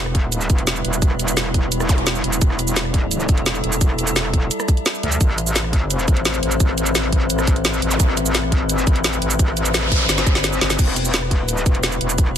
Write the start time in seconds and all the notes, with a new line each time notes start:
Already playing: E1 G3 E4 B4
0.06 cross-stick
0.15 kick, closed hi-hat
0.24 D#1
0.32 closed hi-hat, shaker
0.41 shaker
0.50 E1, kick, closed hi-hat, shaker
0.58 closed hi-hat
0.67 snare, closed hi-hat, shaker
0.76 shaker
0.85 E1, closed hi-hat
0.93 shaker
1.02 kick, closed hi-hat, shaker
1.11 cross-stick
1.19 closed hi-hat, shaker
1.28 closed hi-hat, shaker
1.37 snare, closed hi-hat, shaker
1.46 cross-stick
1.54 kick, closed hi-hat
1.72 E1, closed hi-hat, shaker
1.80 cross-stick, shaker
1.89 kick, closed hi-hat, zap, shaker
1.98 closed hi-hat
2.07 snare, closed hi-hat, shaker
2.15 shaker
2.24 E1, closed hi-hat
2.33 shaker
2.41 E1 A4, kick, closed hi-hat, shaker
2.50 cross-stick
2.59 closed hi-hat, shaker
2.68 shaker
2.76 snare, closed hi-hat, shaker
2.85 cross-stick
2.94 kick, closed hi-hat
3.11 closed hi-hat, shaker
3.20 shaker
3.29 E1, kick, closed hi-hat, shaker
3.38 closed hi-hat
3.46 snare, closed hi-hat, shaker
3.55 shaker
3.64 E1, closed hi-hat
3.72 shaker
3.81 kick, closed hi-hat, shaker
3.90 cross-stick
3.99 closed hi-hat, shaker
4.07 closed hi-hat, shaker
4.16 snare, closed hi-hat, shaker
4.25 cross-stick
4.33 kick, closed hi-hat
4.51 closed hi-hat, shaker
4.60 cross-stick, shaker
4.68 kick, closed hi-hat, shaker
4.77 closed hi-hat
4.86 snare, closed hi-hat, shaker
4.95 shaker
5.03 D2, closed hi-hat
5.12 shaker
5.21 A1 A3 C4 B4, kick, closed hi-hat, shaker
5.29 cross-stick
5.38 closed hi-hat, shaker
5.47 shaker
5.56 snare, closed hi-hat, shaker
5.64 cross-stick
5.73 kick, closed hi-hat
5.90 closed hi-hat, shaker
5.99 shaker
6.08 A1, kick, closed hi-hat, shaker
6.17 closed hi-hat
6.25 snare, closed hi-hat, shaker
6.34 shaker
6.43 A1, closed hi-hat
6.52 shaker
6.60 kick, closed hi-hat, shaker
6.69 cross-stick
6.78 closed hi-hat, shaker
6.86 closed hi-hat, shaker
6.95 snare, closed hi-hat, shaker
7.04 cross-stick
7.13 kick, closed hi-hat
7.30 A1, closed hi-hat, shaker
7.39 cross-stick, shaker
7.47 kick, closed hi-hat, shaker
7.56 closed hi-hat
7.65 snare, closed hi-hat, shaker
7.74 shaker
7.82 A1, closed hi-hat
7.91 zap, shaker
8.00 A1, kick, closed hi-hat, shaker
8.09 cross-stick
8.17 closed hi-hat, shaker
8.26 shaker
8.35 snare, closed hi-hat, shaker
8.43 cross-stick
8.52 kick, closed hi-hat
8.61 G#1
8.70 closed hi-hat, shaker
8.78 shaker
8.87 A1, kick, closed hi-hat, shaker
8.96 closed hi-hat
9.04 snare, closed hi-hat, shaker
9.13 shaker
9.22 A1, closed hi-hat
9.31 shaker
9.39 kick, closed hi-hat, noise sweep, shaker
9.48 cross-stick
9.57 closed hi-hat, shaker
9.66 closed hi-hat, shaker
9.74 snare, closed hi-hat, shaker
9.83 cross-stick
9.92 kick, closed hi-hat
10.09 G1, snare, closed hi-hat, shaker
10.18 snare, closed hi-hat, shaker
10.27 kick, closed hi-hat, shaker
10.35 snare, closed hi-hat
10.44 snare, closed hi-hat, shaker
10.53 shaker
10.61 G1, snare, closed hi-hat
10.70 snare, closed hi-hat, shaker
10.79 E1 G3 E4, kick, closed hi-hat, crash, shaker
10.88 cross-stick
10.96 closed hi-hat, shaker
11.05 shaker
11.14 snare, closed hi-hat, shaker
11.23 cross-stick
11.31 kick, closed hi-hat
11.40 D#1
11.49 closed hi-hat, shaker
11.57 shaker
11.66 E1, kick, closed hi-hat, shaker
11.75 closed hi-hat
11.83 snare, closed hi-hat, shaker
11.92 shaker
12.01 E1, closed hi-hat
12.10 shaker
12.18 kick, closed hi-hat, shaker
12.27 cross-stick